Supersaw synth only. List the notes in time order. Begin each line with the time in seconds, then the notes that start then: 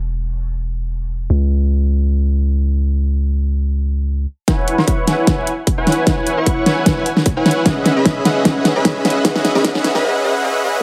4.48 E4 B4 C#5 F#5 G#5
4.78 E4 B4 C#5 F#5 C#6
5.07 E4 B4 C#5 F#5 G#5
5.38 E4 B4 C#5 F#5 G#5
5.78 E4 B4 C#5 F#5 G#5
6.07 C#5
6.37 E4 B4 C#5 F#5 C#6
6.66 E4 B4 C#5 F#5 G#5
6.97 E4 B4 C#5 F#5 G#5
7.37 E4 B4 C#5 F#5 G#5
7.66 C#4 G#4 B4 F#5
7.96 C#4 G#4 B4 D#5 E5 B5
8.25 C#4 G#4 B4 D#5 E5 F#5
8.45 C#4 G#4 B4 D#5 E5 F#5
8.76 C#4 G#4 B4 D#5 E5 B5
9.05 C#4 G#4 B4 D#5 E5 F#5
9.25 C#4 G#4 B4 F#5
9.55 C#4 G#4 B4 D#5 E5 B5
9.95 C#4 G#4 B4 D#5 E5 B5
10.04 C#4 G#4 B4 D#5 E5 F#5
10.24 C#4 G#4 B4 D#5 E5 F#5
10.44 C#4 G#4 B4 D#5 E5 F#5
10.64 C#4 G#4 B4 D#5 E5 F#5